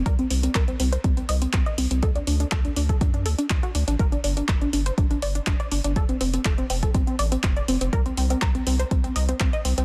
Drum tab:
HH |xxoxxxoxxxoxxxox|xxoxxxoxxxoxxxox|xxoxxxoxxxoxxxox|xxoxxxoxxxoxxxox|
CP |----x-------x---|----x-------x---|----x-------x---|----x-------x---|
BD |o---o---o---o---|o---o--oo---o---|o---o---o---o---|o---o--oo---o---|

HH |xxoxxxoxxxoxxxox|
CP |----x-------x---|
BD |o---o---o---o---|